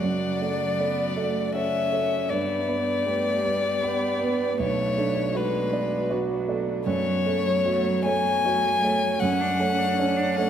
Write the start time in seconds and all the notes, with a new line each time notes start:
Already playing: C#3 F#4 D5 F#5
0.03 F#2 F#3
0.41 A3 D5
0.79 B3 A4 D5
1.17 A3 D5
1.55 C#4 A4 C#5 E5
1.92 A3 C#5
2.30 G2 B3 D4 G4 D5
2.68 B3 B4
3.06 A3 G4 B4
3.44 G3 B3 B4
3.83 B3 G4 B4
4.20 B3 B4
4.58 B1 A3 B3 F#4 C#5
4.97 A3 D4
5.34 G#3 F#4 B4 D5
5.72 B3 D5
6.10 F#3 F#4 D5
6.48 A3 D5
6.86 F#2 A3 C#5
7.06 F#3
7.26 A3 C#5
7.46 F#3
7.65 A3 F#4 C#5
7.88 F#3
8.06 A3 C#5 G#5
8.25 F#3
8.45 A3 F#4 C#5
8.65 F#3
8.83 A3 C#5
9.03 F#3
9.19 F#2 A3 C#4 D4 F#5
9.41 D4
9.60 A3 C#4 C#5
9.79 D4
9.99 C#4 D4 C#5
10.17 D4
10.36 A3 C#4 C#5 F#5